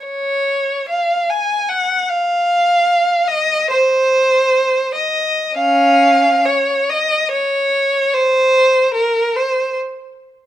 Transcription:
0.04 C#5
0.89 F5
1.30 G#5
1.69 F#5
2.09 F5
3.28 D#5
3.71 C5
4.95 D#5
5.57 C#4 F5
6.46 C#5
6.90 D#5
7.32 C#5
8.14 C5
8.94 A#4
9.36 C5

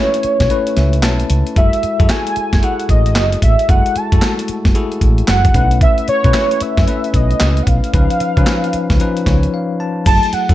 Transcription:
Already playing: A3 C#4 E4 B4 C#5
0.14 closed hi-hat
0.23 muted fretless electric bass stroke, closed hi-hat
0.40 B1, kick, snare, closed hi-hat
0.50 A3 C#4 E4 B4, closed hi-hat
0.67 closed hi-hat
0.77 C#2 E5, snare, closed hi-hat
0.93 closed hi-hat
1.03 B1 A5, snare, clap, closed hi-hat
1.20 closed hi-hat
1.30 C#2, closed hi-hat
1.47 closed hi-hat
1.56 F#1 G#3 E4 F#4 A4 E5, kick, closed hi-hat
1.73 closed hi-hat
1.83 muted fretless electric bass stroke, closed hi-hat
1.99 F#2 E4 F#4 G#4 A4, kick, closed hi-hat
2.09 G#5, snare, clap, closed hi-hat
2.27 closed hi-hat
2.36 muted fretless electric bass stroke, closed hi-hat
2.53 F#1, kick, snare, closed hi-hat
2.62 E4 F#4 G#4 A4 F#5, closed hi-hat
2.80 closed hi-hat
2.89 A1 D#5, kick, closed hi-hat
3.06 closed hi-hat
3.16 F#1, snare, clap, closed hi-hat
3.32 closed hi-hat
3.42 A1 E5, kick, closed hi-hat
3.59 closed hi-hat
3.69 F#1 G#3 E4 F#4 A4 F#5, kick, closed hi-hat
3.86 closed hi-hat
3.96 A5, muted fretless electric bass stroke, closed hi-hat
4.12 F#2 A3 E4 F#4 A4, kick, closed hi-hat
4.22 snare, clap, closed hi-hat
4.39 closed hi-hat
4.48 muted fretless electric bass stroke, closed hi-hat
4.65 F#1, kick, snare, closed hi-hat
4.75 E4 F#4 G#4 A4, closed hi-hat
4.92 closed hi-hat
5.01 A1, kick, closed hi-hat
5.18 closed hi-hat
5.28 F#1 F#5, snare, clap, closed hi-hat
5.45 kick, closed hi-hat
5.54 B1 A3 C#4 D#4 B4, kick, closed hi-hat
5.61 E4
5.71 closed hi-hat
5.81 E5, kick, closed hi-hat
5.98 closed hi-hat
6.08 C#5, muted fretless electric bass stroke, closed hi-hat
6.24 B2 A3 C#4 E4 B4, kick, closed hi-hat
6.34 snare, clap, closed hi-hat
6.51 closed hi-hat
6.60 E5, muted fretless electric bass stroke, closed hi-hat
6.77 F#2, kick, snare, closed hi-hat
6.87 A3 C#4 E4 B4, closed hi-hat
7.04 closed hi-hat
7.14 B1 D#5, kick, closed hi-hat
7.31 closed hi-hat
7.40 C#2, snare, clap, closed hi-hat
7.57 closed hi-hat
7.63 F#5
7.67 B1 F5, kick, closed hi-hat
7.84 closed hi-hat
7.93 C#2 F3 C#4 D#4 B4, kick, closed hi-hat
8.10 closed hi-hat
8.20 muted fretless electric bass stroke, closed hi-hat
8.37 C#3 F3 C#4 D#4 B4, kick, closed hi-hat
8.47 snare, clap, closed hi-hat
8.64 closed hi-hat
8.73 muted fretless electric bass stroke, closed hi-hat
8.90 C#2, kick, snare, closed hi-hat
9.00 F3 C#4 D#4 B4, closed hi-hat
9.17 closed hi-hat
9.26 C#2 C#5, kick, snare, closed hi-hat
9.43 closed hi-hat
9.54 F5
9.80 A5
10.06 F#1 F#3 A3 E4 G#4 A5, kick, closed hi-hat, crash, shaker
10.22 closed hi-hat, shaker
10.33 F#5, muted fretless electric bass stroke, closed hi-hat
10.49 F#2 F#3 A3 E4 A4, kick, closed hi-hat, shaker

